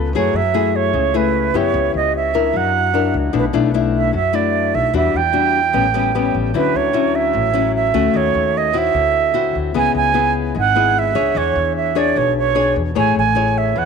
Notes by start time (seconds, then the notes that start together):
Already playing: C#2 C#3 B3 F4 A4
0.13 F#2 F#3 A3 E4 G#4 C#5
0.33 F#2 E5
0.54 A3 E4 G#4
0.76 C#5
0.93 C#2 C#3
1.14 A3 E4 G#4 B4
1.54 F#2 B3 E4 G4 C#5
1.74 C#2 C#3
1.94 C#2 D#5
2.16 E5
2.34 D4 E4 A#4
2.53 F#2 F#3 F#5
2.94 D4 E4 A#4
3.14 C#2
3.33 B1 B2 A3 D4 E4
3.38 B4
3.53 B1 A3 D4 E4
3.74 A3 D4 E4
3.96 E5
4.13 F#2 F#3 E5
4.33 A3 D4 E4 D5
4.75 B1 E5
4.93 E2 E3 G3 D4 F#4 E5
5.14 E2 G5
5.33 G3 D4 F#4
5.73 A1 A2 G3 B3 C#4
5.94 G3 B3 C#4
6.15 G3 B3 C#4
6.34 A1
6.54 D2 D3 F#3 C#4 E4 B4
6.75 D2 C#5
6.93 F#3 C#4 E4
7.15 E5
7.33 A1 A2
7.54 F#3 C#4 E4
7.76 E5
7.94 D2 A3 C#4 F#4
8.14 D#2 D#3 C#5
8.35 D#2
8.57 D#5
8.73 C4 E4 F#4
8.78 E5
8.94 D2 D3
9.34 C4 E4 F#4
9.55 D2
9.74 C#2 C#3 B3 E4 G#4 G#5
9.95 C#2 G#5
10.14 B3 E4 G#4
10.55 G#1 G#3
10.59 F#5
10.75 B3 E4 G#4
10.99 E5
11.15 C#2 D4 G#4 C#5
11.35 E2 E3 C#5
11.56 E2
11.77 E5
11.95 D4 G#4 C#5 D5
12.16 B1 B2 C#5
12.38 C#5
12.55 D4 G#4 C#5
12.76 E2
12.95 A1 A3 E4 G#4 C#5 G#5
13.16 A1 G#5
13.35 E4 G#4 C#5
13.58 E5
13.76 E2 E3 F#5